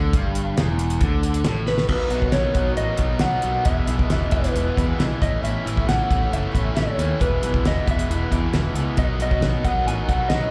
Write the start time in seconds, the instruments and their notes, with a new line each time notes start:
Already playing: picked electric bass D2, overdriven electric guitar D3
0.13 picked electric bass G1, overdriven electric guitar G2, kick, closed hi-hat
0.35 closed hi-hat
0.56 picked electric bass E1, overdriven electric guitar E2, snare, closed hi-hat
0.79 closed hi-hat
0.90 closed hi-hat
1.01 picked electric bass D2, overdriven electric guitar D3, kick, closed hi-hat
1.23 closed hi-hat
1.34 closed hi-hat
1.44 picked electric bass A1, overdriven electric guitar A2, snare, closed hi-hat
1.67 electric slide guitar B4, snare
1.78 snare
1.87 picked electric bass B1, steel-string acoustic guitar B2 F#3 B3 D#4 F#4, overdriven electric guitar D#3, electric slide guitar B4, kick, crash
2.10 picked electric bass B1, overdriven electric guitar B2 D#3, steel-string acoustic guitar F#3 B3 D#4 F#4, closed hi-hat
2.20 steel-string acoustic guitar B3 D#4 F#4, kick
2.31 picked electric bass B1, steel-string acoustic guitar B2 F#3 B3 D#4 F#4, overdriven electric guitar D#3, electric slide guitar C#5, snare, closed hi-hat
2.54 picked electric bass B1, overdriven electric guitar B2 D#3, steel-string acoustic guitar F#3 B3 D#4 F#4, kick, closed hi-hat
2.68 steel-string acoustic guitar B3 D#4 F#4
2.76 picked electric bass A1, overdriven electric guitar B2 D#3 F#3 B3 D#4, electric slide guitar D#5, closed hi-hat
2.88 steel-string acoustic guitar B3 F#4
2.97 picked electric bass B1, overdriven electric guitar B2 D#3, steel-string acoustic guitar F#3 B3 D#4 F#4, kick, closed hi-hat
3.19 picked electric bass B1, steel-string acoustic guitar B2 F#3 B3 D#4 F#4, overdriven electric guitar D#3, electric slide guitar F#5, snare, closed hi-hat
3.30 steel-string acoustic guitar B3 D#4 F#4
3.41 picked electric bass B1, overdriven electric guitar B2 D#3, steel-string acoustic guitar F#3 B3 D#4 F#4, closed hi-hat
3.52 steel-string acoustic guitar B3 D#4 F#4
3.65 picked electric bass E1, steel-string acoustic guitar E2 B2 E3 G#3 B3 G#4, overdriven electric guitar E4, electric slide guitar E5, kick, closed hi-hat
3.87 picked electric bass B1, overdriven electric guitar E2 B2 E4, steel-string acoustic guitar E3 G#3 B3 G#4, closed hi-hat
3.97 steel-string acoustic guitar E3 G#3 B3 G#4, kick
4.10 picked electric bass E1, steel-string acoustic guitar E2 B2 E3 G#3 B3 G#4, overdriven electric guitar E4, snare, closed hi-hat
4.14 electric slide guitar D#5
4.31 picked electric bass E1, overdriven electric guitar E2 B2 E4, steel-string acoustic guitar E3 G#3 B3 G#4, electric slide guitar B4, kick, closed hi-hat
4.44 steel-string acoustic guitar E3 G#3 B3 G#4, snare, closed hi-hat
4.54 picked electric bass E1, overdriven electric guitar E2 B2 E3 G#3 B3 E4, closed hi-hat
4.67 steel-string acoustic guitar E3 G#3 B3 G#4
4.76 overdriven electric guitar E2 B2 E4, picked electric bass E2, steel-string acoustic guitar E3 G#3 B3, kick, closed hi-hat
4.80 steel-string acoustic guitar G#4
4.98 picked electric bass B1, steel-string acoustic guitar E2 B2 E3 G#3 B3 G#4, overdriven electric guitar E4, snare, closed hi-hat
5.11 steel-string acoustic guitar E3 G#3 B3 G#4
5.19 picked electric bass A1, overdriven electric guitar A2 A3, steel-string acoustic guitar E3 B3 C#4 E4, electric slide guitar D#5, kick, closed hi-hat
5.32 steel-string acoustic guitar B3 C#4 E4
5.42 picked electric bass A1, steel-string acoustic guitar A2 E3 B3 C#4 E4, overdriven electric guitar A3, electric slide guitar E5, closed hi-hat
5.65 picked electric bass A1, overdriven electric guitar A2 A3, steel-string acoustic guitar E3 B3 C#4 E4, closed hi-hat
5.77 steel-string acoustic guitar B3 C#4 E4, kick
5.86 picked electric bass A1, steel-string acoustic guitar A2 E3 B3 C#4 E4, overdriven electric guitar A3, electric slide guitar F#5, snare, closed hi-hat
6.09 picked electric bass A1, overdriven electric guitar A2 A3, steel-string acoustic guitar E3 B3 C#4 E4, kick, closed hi-hat
6.21 steel-string acoustic guitar B3 C#4 E4
6.30 picked electric bass F#1, overdriven electric guitar A2 E3 A3 C#4 E4, electric slide guitar E5, closed hi-hat
6.40 steel-string acoustic guitar B3 C#4 E4
6.52 picked electric bass A1, overdriven electric guitar A2 A3, steel-string acoustic guitar E3 B3 C#4 E4, kick, closed hi-hat
6.75 picked electric bass A1, steel-string acoustic guitar A2 E3 B3 C#4 E4, overdriven electric guitar A3, electric slide guitar C#5, snare, closed hi-hat
6.87 steel-string acoustic guitar B3 C#4 E4
6.97 picked electric bass D#2, overdriven electric guitar A2 A3, steel-string acoustic guitar E3 B3 C#4 E4, closed hi-hat
7.09 steel-string acoustic guitar B3 C#4 E4
7.19 picked electric bass E1, steel-string acoustic guitar E2 B2 E3 G#3 B3 E4, electric slide guitar B4, kick, closed hi-hat
7.42 picked electric bass B1, overdriven electric guitar E2 B2, steel-string acoustic guitar E3 G#3 B3 E4, closed hi-hat
7.53 steel-string acoustic guitar E3 G#3 B3 E4, kick
7.63 picked electric bass E1, steel-string acoustic guitar E2 B2 E3 G#3 B3 E4, electric slide guitar D#5, snare, closed hi-hat
7.86 picked electric bass E1, overdriven electric guitar E2 B2, steel-string acoustic guitar E3 G#3 B3 E4, kick, closed hi-hat
7.91 electric slide guitar E5
7.98 steel-string acoustic guitar E3 G#3 B3 E4, closed hi-hat
8.08 picked electric bass E1, overdriven electric guitar E2 B2 E3 G#3 B3 E4, closed hi-hat
8.21 steel-string acoustic guitar E3 G#3 B3 E4
8.31 picked electric bass E2, overdriven electric guitar E2 B2, steel-string acoustic guitar E3 G#3 B3 E4, kick, closed hi-hat
8.53 picked electric bass E1, steel-string acoustic guitar E2 B2 E3 G#3 B3 E4, snare, closed hi-hat
8.63 steel-string acoustic guitar E3 G#3 B3 E4
8.74 picked electric bass C#2, overdriven electric guitar E2 B2, steel-string acoustic guitar E3 G#3 B3 E4, closed hi-hat
8.96 picked electric bass B1, steel-string acoustic guitar B2 F#3 B3 D#4 F#4, overdriven electric guitar D#3, electric slide guitar D#5, kick, closed hi-hat
9.18 picked electric bass B1, overdriven electric guitar B2 D#3, steel-string acoustic guitar F#3 B3 D#4, closed hi-hat
9.22 steel-string acoustic guitar F#4, electric slide guitar D#5
9.30 steel-string acoustic guitar B3 D#4 F#4, kick
9.40 picked electric bass B1, steel-string acoustic guitar B2 F#3 B3, overdriven electric guitar D#3, snare, closed hi-hat
9.44 steel-string acoustic guitar D#4 F#4
9.65 picked electric bass B1, overdriven electric guitar B2 D#3, steel-string acoustic guitar F#3 B3 D#4 F#4, electric slide guitar F#5, kick, closed hi-hat
9.78 steel-string acoustic guitar B3 D#4 F#4
9.84 picked electric bass A1, overdriven electric guitar B2 F#3, electric slide guitar G#5, closed hi-hat
9.88 overdriven electric guitar D#3 B3 D#4
9.99 steel-string acoustic guitar B3 D#4 F#4
10.08 picked electric bass B1, overdriven electric guitar B2 D#3, steel-string acoustic guitar F#3 B3 D#4 F#4, electric slide guitar F#5, kick, closed hi-hat
10.29 picked electric bass B1, steel-string acoustic guitar B2 F#3, overdriven electric guitar D#3, electric slide guitar D#5, snare, closed hi-hat
10.33 steel-string acoustic guitar B3 D#4 F#4
10.43 steel-string acoustic guitar B3 D#4 F#4